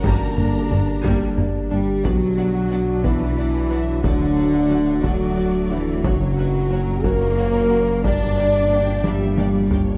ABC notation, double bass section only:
X:1
M:6/8
L:1/8
Q:3/8=60
K:Bm
V:1 name="Double bass section" clef=bass
G,,, G,,, G,,, G,,, G,,, G,,, | B,,,3 B,,,3 | D,,3 D,,3 | F,,,3 F,,,3 |
G,,,3 G,,,3 |]